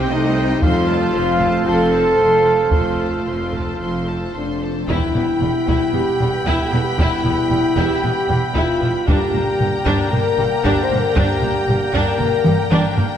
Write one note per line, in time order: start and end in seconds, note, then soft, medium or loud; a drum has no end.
0.00 0.11 C4 medium
0.00 0.63 C4 medium
0.00 0.58 G4 medium
0.00 0.63 C5 medium
0.00 0.11 G5 medium
0.00 0.59 G5 medium
0.09 0.57 C2 medium
0.09 0.57 C3 medium
0.09 0.36 A3 medium
0.09 0.62 D#4 medium
0.09 0.36 C5 medium
0.09 0.34 D#5 medium
0.09 0.37 D#5 medium
0.36 1.14 G3 medium
0.36 0.61 C5 medium
0.36 0.62 D#5 medium
0.36 0.63 G5 medium
0.61 1.08 F1 medium
0.61 1.08 F2 medium
0.61 4.58 C4 medium
0.61 1.66 F4 loud
0.61 1.64 F4 medium
0.61 0.87 A4 medium
0.61 4.62 A4 medium
0.61 0.86 C5 medium
0.61 4.58 C5 medium
0.61 4.62 F5 medium
0.61 0.87 C6 medium
0.61 taiko medium
0.87 1.12 A4 medium
0.87 1.12 C5 medium
0.87 1.15 A5 medium
1.13 1.61 F1 medium
1.13 1.61 F2 medium
1.13 1.40 F3 medium
1.13 1.37 A4 medium
1.13 1.38 C5 medium
1.13 1.41 C6 medium
1.39 1.66 A3 medium
1.39 1.63 A4 medium
1.39 1.63 C5 medium
1.39 1.66 A5 medium
1.39 taiko medium
1.64 2.13 F1 medium
1.64 2.13 F2 medium
1.64 2.18 C4 medium
1.64 1.90 A4 soft
1.64 2.73 A4 medium
1.64 2.73 A4 loud
1.64 1.90 C5 medium
1.64 1.91 C6 medium
1.91 2.17 A4 soft
1.91 2.17 C5 soft
1.91 2.19 A5 medium
2.18 2.67 F1 medium
2.18 2.66 F2 medium
2.18 2.71 A3 medium
2.18 2.45 A4 soft
2.18 2.45 C5 soft
2.18 2.46 C6 soft
2.45 2.72 A4 soft
2.45 2.71 C5 soft
2.45 2.73 A5 soft
2.71 3.21 F1 soft
2.71 3.21 F2 medium
2.71 4.58 A3 medium
2.71 4.31 F4 medium
2.71 2.97 A4 soft
2.71 2.98 C5 soft
2.71 2.98 C6 soft
2.71 taiko medium
2.98 3.26 A4 soft
2.98 3.25 C5 soft
2.98 3.28 A5 soft
3.27 3.74 F1 soft
3.27 3.74 F2 soft
3.27 3.51 A4 soft
3.27 3.50 C5 soft
3.27 3.54 C6 soft
3.52 3.79 A4 soft
3.52 3.79 C5 soft
3.52 3.81 A5 soft
3.52 taiko medium
3.80 4.28 F1 soft
3.80 4.28 F2 soft
3.80 4.06 A4 soft
3.80 4.05 C5 soft
3.80 4.06 C6 soft
4.08 4.34 A4 soft
4.08 4.33 C5 soft
4.08 4.35 A5 soft
4.34 4.82 F1 soft
4.34 4.82 F2 soft
4.34 4.85 D4 medium
4.34 4.61 A4 soft
4.34 4.61 C5 soft
4.34 4.61 C6 soft
4.62 4.89 A4 soft
4.62 4.89 C5 soft
4.62 4.89 A5 soft
4.88 4.96 E1 medium
4.88 4.96 E2 medium
4.88 5.64 E2 medium
4.88 9.04 G3 medium
4.88 9.04 B3 medium
4.88 5.13 E4 medium
4.88 5.94 E4 medium
4.88 9.04 G4 medium
4.88 9.04 B4 medium
4.88 9.04 E5 medium
4.88 9.04 G5 medium
4.88 9.05 B5 medium
4.88 taiko medium
5.14 5.24 E1 soft
5.14 5.22 E2 soft
5.14 5.24 B3 soft
5.14 taiko low-mid soft
5.41 5.50 E1 soft
5.41 5.49 E2 soft
5.41 5.50 G3 soft
5.41 taiko low-mid medium
5.66 5.76 E1 medium
5.66 5.74 E2 medium
5.66 5.92 E4 medium
5.66 taiko medium
5.93 6.03 E1 soft
5.93 6.02 E2 medium
5.93 6.01 B3 soft
5.93 6.46 G4 medium
5.93 taiko low-mid medium
6.20 6.29 E1 medium
6.20 6.28 E2 medium
6.20 6.28 G3 medium
6.20 taiko low-mid soft
6.46 6.55 E1 medium
6.46 6.54 E2 medium
6.46 6.64 E4 medium
6.46 6.71 E4 medium
6.46 taiko medium
6.65 6.82 A4 medium
6.72 6.81 E1 medium
6.72 6.80 E2 soft
6.72 6.80 B3 medium
6.72 taiko low-mid soft
6.83 7.00 G4 medium
6.98 7.07 E1 medium
6.98 7.06 E2 medium
6.98 7.76 E4 medium
6.98 7.24 E4 medium
6.98 taiko medium
7.25 7.33 E1 medium
7.25 7.33 E2 soft
7.25 7.33 B3 soft
7.25 taiko low-mid soft
7.51 7.59 E1 medium
7.51 7.59 E2 soft
7.51 7.59 G3 soft
7.51 taiko low-mid medium
7.77 7.85 E1 medium
7.77 7.85 E2 medium
7.77 8.02 E4 medium
7.77 8.03 G4 medium
7.77 taiko medium
8.03 8.11 E1 soft
8.03 8.11 E2 soft
8.03 8.11 B3 medium
8.03 8.40 G4 medium
8.03 taiko low-mid medium
8.29 8.38 E1 medium
8.29 8.37 E2 medium
8.29 8.37 G3 medium
8.29 taiko low-mid soft
8.55 8.63 E1 medium
8.55 8.63 E2 medium
8.55 8.80 E4 medium
8.55 9.07 F4 loud
8.55 taiko medium
8.81 8.90 E1 medium
8.81 8.90 E2 medium
8.81 8.89 B3 medium
8.81 taiko low-mid soft
9.07 9.17 G1 medium
9.07 9.17 G2 medium
9.07 13.07 D3 medium
9.07 13.07 A#3 medium
9.07 9.32 D4 medium
9.07 13.17 D4 medium
9.07 10.12 G4 medium
9.07 13.17 G4 medium
9.07 13.17 A#4 medium
9.07 13.17 G5 medium
9.07 13.17 A#5 medium
9.07 taiko medium
9.34 9.42 G1 medium
9.34 9.43 G2 soft
9.34 9.42 A#3 medium
9.34 taiko low-mid soft
9.60 9.69 G1 medium
9.60 9.68 G2 medium
9.60 9.68 G3 soft
9.60 taiko low-mid medium
9.86 9.94 G1 medium
9.86 9.94 G2 medium
9.86 10.11 D4 medium
9.86 taiko medium
10.12 10.21 G1 medium
10.12 10.21 G2 medium
10.12 10.20 A#3 soft
10.12 10.63 A#4 loud
10.12 taiko low-mid soft
10.38 10.47 G1 medium
10.38 10.47 G2 medium
10.38 10.46 G3 medium
10.38 taiko low-mid medium
10.64 10.72 G1 medium
10.64 10.72 G2 medium
10.64 10.88 D4 medium
10.64 10.82 G4 loud
10.64 taiko medium
10.82 10.99 C5 loud
10.91 10.99 G1 medium
10.91 10.99 G2 medium
10.91 10.99 A#3 medium
10.91 taiko low-mid soft
11.00 11.16 A#4 medium
11.16 11.24 G1 medium
11.16 11.24 G2 medium
11.16 11.40 D4 medium
11.16 11.94 G4 loud
11.16 taiko loud
11.42 11.51 G1 medium
11.42 11.50 G2 medium
11.42 11.51 A#3 medium
11.42 taiko low-mid medium
11.68 11.76 G1 medium
11.68 11.77 G2 medium
11.68 11.77 G3 medium
11.68 taiko low-mid medium
11.94 12.02 G1 medium
11.94 12.03 G2 medium
11.94 12.18 D4 medium
11.94 12.18 A#4 medium
11.94 taiko medium
12.19 12.28 G1 medium
12.19 12.27 G2 medium
12.19 12.28 A#3 soft
12.19 12.71 A#4 loud
12.19 taiko low-mid medium
12.46 12.54 G1 medium
12.46 12.54 G2 medium
12.46 12.54 G3 medium
12.46 taiko mid medium
12.71 12.79 G1 medium
12.71 12.80 G2 medium
12.71 12.96 D4 medium
12.71 taiko mid medium
12.97 13.05 G1 medium
12.97 13.05 G2 medium
12.97 13.05 A#3 medium
12.97 taiko low medium